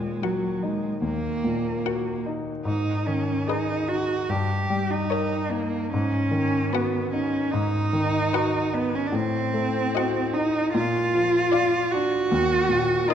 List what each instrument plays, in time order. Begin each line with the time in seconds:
Already playing: grand piano D#2 A#2, cello G#3
0.23 cello F#3, grand piano F#4, violin A#4 F#5
0.63 cello G#3, grand piano D#4
1.02 grand piano D#2, cello A#3
1.44 grand piano A#2
1.86 grand piano F#4, violin A#4 F#5
2.26 grand piano D#4
2.65 grand piano G#2, cello D#4
3.06 grand piano D#3, cello C#4
3.47 cello D#4, grand piano G#4, violin B4 D#5
3.88 grand piano D#4, cello F#4
4.29 grand piano G2, cello G4
4.70 grand piano G3
4.90 cello D#4
5.10 grand piano A#4, violin C#5 D#5
5.50 cello A#3, grand piano D#4
5.92 grand piano G#2, cello C#4
6.31 grand piano D#3
6.72 cello B3, grand piano F#4, violin B4 F#5
7.12 cello C#4, grand piano D#4
7.52 grand piano G#2, cello D#4
7.93 grand piano D#3
8.33 grand piano F#4, violin B4 F#5
8.73 cello B3, grand piano D#4
8.95 cello C#4
9.07 cello D4
9.12 grand piano A2, cello C4
9.54 grand piano A3
9.95 grand piano F#4, violin D#5 F#5
10.33 cello D#4, grand piano D#4
10.73 grand piano A#2, cello F4
11.15 grand piano F3
11.52 grand piano F4, violin D5 F5
11.91 grand piano D4, cello F#4
12.31 grand piano D#2
12.69 grand piano A#2
13.08 grand piano D#4, cello F4, violin A#4 D#5